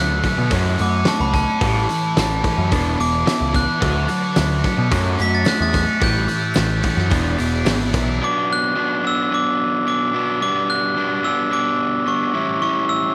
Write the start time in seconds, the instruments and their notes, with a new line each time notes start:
Already playing: picked electric bass D2, overdriven electric guitar D3 F#3, distorted electric guitar D3 A3 F#4, tonewheel organ F#4 D5 A5 B5, glockenspiel F#6
0.10 tambourine
0.22 overdriven electric guitar D3 F#3, distorted electric guitar B3, kick, open hi-hat, tambourine
0.38 picked electric bass B2
0.50 distorted electric guitar F#2, picked electric bass F#2, overdriven electric guitar F#3 A3 C#4, tonewheel organ E4 C#5 F#5, kick, open hi-hat, tambourine
0.66 tambourine
0.78 picked electric bass F#2, overdriven electric guitar F#3 A3, distorted electric guitar C#4, glockenspiel D6, open hi-hat, tambourine
0.94 tambourine
1.05 overdriven electric guitar F#3 A3, distorted electric guitar F#4, glockenspiel A5, snare, open hi-hat, tambourine
1.20 picked electric bass C#2, glockenspiel B5, tambourine
1.33 overdriven electric guitar F#3 A3, distorted electric guitar C#4, glockenspiel A5, kick, open hi-hat, tambourine
1.49 tambourine
1.60 picked electric bass A1, overdriven electric guitar A2 E3 G3, distorted electric guitar A2, tonewheel organ G5, kick, open hi-hat, tambourine
1.78 tambourine
1.89 overdriven electric guitar A2 E3, distorted electric guitar E4, open hi-hat, tambourine
2.03 tambourine
2.16 picked electric bass A1, overdriven electric guitar A2 E3, distorted electric guitar G3, snare, open hi-hat, tambourine
2.33 tambourine
2.43 overdriven electric guitar A2 E3, distorted electric guitar C#4, kick, open hi-hat, tambourine
2.58 picked electric bass F#2
2.71 picked electric bass E1, distorted electric guitar E2, overdriven electric guitar E3 B3 D4, tonewheel organ B4 D5 G#5, kick, open hi-hat, tambourine
2.98 picked electric bass E1, overdriven electric guitar E3 B3, distorted electric guitar D4, glockenspiel D6, open hi-hat, tambourine
3.14 tambourine
3.26 overdriven electric guitar E3 B3, distorted electric guitar E4, snare, open hi-hat, tambourine
3.41 picked electric bass C#2
3.53 overdriven electric guitar E3 B3, distorted electric guitar D4, glockenspiel F#6, kick, open hi-hat, tambourine
3.68 tambourine
3.81 picked electric bass D2, overdriven electric guitar D3 F#3 A3, distorted electric guitar D3, tonewheel organ F#4 D5 A5, kick, open hi-hat, tambourine
3.96 tambourine
4.08 overdriven electric guitar D3 F#3, distorted electric guitar F#4, open hi-hat, tambourine
4.35 picked electric bass D2, overdriven electric guitar D3 F#3, distorted electric guitar A3, snare, open hi-hat, tambourine
4.63 overdriven electric guitar D3 F#3, distorted electric guitar B3, kick, snare, open hi-hat, tambourine
4.78 picked electric bass B2
4.91 distorted electric guitar F#2, picked electric bass F#2, overdriven electric guitar F#3 A3 C#4, tonewheel organ F#4 C#5 E5, kick, open hi-hat, tambourine
5.06 tambourine
5.17 picked electric bass F#2, overdriven electric guitar F#3 A3, distorted electric guitar C#4, open hi-hat, tambourine
5.22 glockenspiel B6
5.35 glockenspiel A6
5.45 overdriven electric guitar F#3 A3, distorted electric guitar F#4, glockenspiel F#6, snare, open hi-hat, tambourine
5.59 picked electric bass E2, glockenspiel A6, tambourine
5.73 overdriven electric guitar F#3 A3, distorted electric guitar C#4, glockenspiel F#6, kick, open hi-hat, tambourine
5.88 tambourine
6.00 picked electric bass A1, overdriven electric guitar A2 E3 G3, distorted electric guitar A2, tonewheel organ G4 E5, glockenspiel G6, kick, open hi-hat, tambourine
6.15 tambourine
6.27 overdriven electric guitar A2 E3, distorted electric guitar E4, open hi-hat, tambourine
6.42 tambourine
6.54 picked electric bass A1, overdriven electric guitar A2 E3, distorted electric guitar G3, snare, open hi-hat, tambourine
6.82 overdriven electric guitar A2 E3, distorted electric guitar C#4, kick, open hi-hat, tambourine
6.96 picked electric bass F#2, snare, tambourine
7.10 picked electric bass E1, distorted electric guitar E2, overdriven electric guitar E3 B3 D4, kick, open hi-hat, tambourine
7.15 tonewheel organ G#4 D5 B5
7.25 tambourine
7.38 picked electric bass E1, overdriven electric guitar E3 B3, distorted electric guitar D4, open hi-hat, tambourine
7.52 tambourine
7.66 picked electric bass G#1, overdriven electric guitar E3 B3, distorted electric guitar E4, snare, open hi-hat, tambourine
7.79 tambourine
7.93 picked electric bass B1, overdriven electric guitar E3 B3, distorted electric guitar D4, kick, open hi-hat, tambourine
8.07 tambourine
8.21 overdriven electric guitar B2 F#3 B3 D4, glockenspiel D6
8.53 glockenspiel F#6
8.75 overdriven electric guitar B2 F#3 B3 D4
9.04 overdriven electric guitar B2 F#3 B3 D4, glockenspiel E6
9.31 overdriven electric guitar B2 F#3 B3 D4, glockenspiel D6
9.86 overdriven electric guitar B2 F#3 B3 D4, glockenspiel D6
10.13 overdriven electric guitar B2 F#3 B3 D4
10.41 overdriven electric guitar B2 G3 B3 D4, glockenspiel D6
10.70 glockenspiel F#6
10.96 overdriven electric guitar B2 G3 B3 D4
11.23 overdriven electric guitar B2 G3 B3 D4, glockenspiel E6
11.50 overdriven electric guitar B2 G3 B3 D4, glockenspiel D6
12.06 overdriven electric guitar B2 G3 B3 D4, glockenspiel C#6
12.33 overdriven electric guitar A2 E3 G3 C#4 E4
12.61 overdriven electric guitar A2 E3 G3 C#4 E4, glockenspiel C#6
12.89 glockenspiel E6